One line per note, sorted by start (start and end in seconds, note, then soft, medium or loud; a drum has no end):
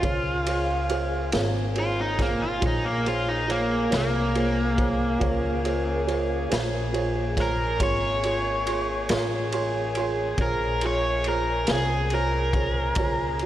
0.00 1.29 C#2 medium
0.00 13.46 A#3 medium
0.00 13.46 C#4 medium
0.00 1.29 F4 medium
0.00 0.35 F4 medium
0.00 13.46 G#4 medium
0.00 0.35 G#4 medium
0.00 0.35 C5 medium
0.00 0.36 C#5 medium
0.00 kick medium
0.00 ride medium
0.46 0.78 F4 medium
0.46 0.79 G#4 soft
0.46 0.79 C5 soft
0.46 0.79 C#5 medium
0.46 ride medium
0.90 1.22 F4 medium
0.90 1.22 G#4 medium
0.90 1.22 C5 medium
0.90 1.22 C#5 medium
0.90 ride medium
1.32 2.59 G#1 medium
1.32 1.65 F4 medium
1.32 1.65 G#4 medium
1.32 1.65 C5 medium
1.32 1.65 C#5 medium
1.32 snare loud
1.32 ride medium
1.75 2.08 F4 soft
1.75 2.08 G#4 soft
1.75 2.08 C5 medium
1.75 2.09 C#5 medium
1.75 ride medium
1.80 1.99 F4 medium
2.01 2.20 D#4 medium
2.17 2.51 F4 medium
2.17 2.51 G#4 medium
2.17 2.51 C5 soft
2.17 2.51 C#5 medium
2.17 kick medium
2.17 snare soft
2.17 ride medium
2.22 2.41 A#3 medium
2.42 2.62 F4 medium
2.60 3.88 A#1 medium
2.60 2.94 F4 medium
2.60 2.94 G#4 soft
2.60 2.94 C5 soft
2.60 2.95 C#5 medium
2.60 kick loud
2.60 ride medium
2.67 2.86 D#4 medium
2.85 3.05 A#3 medium
3.05 3.38 F4 medium
3.05 3.28 F4 loud
3.05 3.38 G#4 soft
3.05 3.38 C5 soft
3.05 3.39 C#5 medium
3.05 ride medium
3.29 3.49 D#4 medium
3.47 3.81 F4 medium
3.47 3.80 G#4 soft
3.47 3.81 C5 medium
3.47 3.81 C#5 medium
3.47 ride medium
3.51 3.92 A#3 medium
3.90 5.18 C2 medium
3.90 4.23 F4 soft
3.90 4.24 G#4 soft
3.90 4.24 C5 soft
3.90 4.24 C#5 medium
3.90 snare loud
3.90 ride medium
3.96 6.49 A#3 medium
4.35 4.68 F4 medium
4.35 4.68 G#4 medium
4.35 4.68 C5 medium
4.35 4.68 C#5 medium
4.35 ride medium
4.77 5.10 F4 medium
4.77 5.10 G#4 soft
4.77 5.10 C5 soft
4.77 5.11 C#5 medium
4.77 kick medium
4.77 ride soft
5.19 6.47 C#2 medium
5.19 5.53 F4 medium
5.19 5.54 G#4 medium
5.19 5.54 C5 medium
5.19 5.54 C#5 medium
5.19 kick loud
5.19 ride medium
5.64 5.97 F4 medium
5.64 5.97 G#4 medium
5.64 5.97 C5 medium
5.64 5.97 C#5 medium
5.64 ride medium
6.07 6.40 F4 medium
6.07 6.40 G#4 medium
6.07 6.40 C5 medium
6.07 6.40 C#5 medium
6.07 ride medium
6.49 7.77 A#1 medium
6.49 6.82 F4 medium
6.49 6.82 G#4 medium
6.49 6.83 C5 medium
6.49 6.83 C#5 medium
6.49 ride medium
6.53 snare loud
6.93 7.26 F4 medium
6.93 7.27 G#4 medium
6.93 7.26 C5 medium
6.93 7.27 C#5 medium
6.93 ride medium
7.37 7.70 F4 medium
7.37 7.70 G#4 soft
7.37 7.70 C5 medium
7.37 7.70 C#5 medium
7.37 kick medium
7.37 snare soft
7.37 ride medium
7.42 7.82 A#4 loud
7.80 9.06 G#1 medium
7.80 8.13 F4 medium
7.80 8.13 G#4 medium
7.80 8.13 C#5 medium
7.80 10.37 C#5 loud
7.80 8.13 C6 soft
7.80 kick medium
7.80 ride medium
8.24 8.56 F4 soft
8.24 8.56 G#4 soft
8.24 8.57 C#5 medium
8.24 8.57 C6 soft
8.24 ride medium
8.67 8.99 F4 soft
8.67 9.00 G#4 soft
8.67 9.00 C#5 medium
8.67 9.00 C6 soft
8.67 ride medium
9.09 10.36 A1 medium
9.09 9.43 F4 medium
9.09 9.43 G#4 medium
9.09 9.43 C#5 medium
9.09 9.43 C6 medium
9.09 snare loud
9.09 ride medium
9.52 9.86 F4 medium
9.52 9.86 G#4 medium
9.52 9.86 C#5 medium
9.52 9.86 C6 medium
9.52 ride medium
9.95 10.29 F4 medium
9.95 10.29 G#4 medium
9.95 10.30 C#5 medium
9.95 10.29 C6 medium
9.95 ride medium
10.38 11.65 A#1 medium
10.38 10.72 F4 medium
10.38 10.72 G#4 medium
10.38 10.72 C5 medium
10.38 10.72 C#5 medium
10.38 kick medium
10.38 ride medium
10.42 10.83 A#4 medium
10.81 11.15 F4 medium
10.81 11.15 G#4 soft
10.81 11.16 C#5 medium
10.81 11.15 C6 soft
10.81 ride medium
10.86 11.26 C#5 medium
11.24 11.59 F4 medium
11.24 11.59 G#4 soft
11.24 11.59 C5 soft
11.24 ride medium
11.28 11.69 A#4 medium
11.28 11.59 C#5 medium
11.67 12.95 C2 medium
11.67 12.01 F4 medium
11.67 12.02 G#4 soft
11.67 12.02 C5 soft
11.67 12.02 C#5 medium
11.67 snare loud
11.67 ride medium
11.71 12.12 G#4 medium
12.10 12.45 F4 soft
12.10 12.45 G#4 soft
12.10 12.45 C5 medium
12.10 12.45 C#5 medium
12.10 ride medium
12.15 13.46 A#4 loud
12.53 12.88 F4 soft
12.53 12.88 G#4 medium
12.53 12.88 C5 soft
12.53 12.88 C#5 medium
12.53 kick medium
12.53 ride medium
12.95 13.46 C#2 medium
12.95 13.31 F4 medium
12.95 13.31 G#4 soft
12.95 13.31 C5 medium
12.95 13.31 C#5 medium
12.95 kick loud
12.95 ride medium
13.39 13.46 F4 medium
13.39 ride medium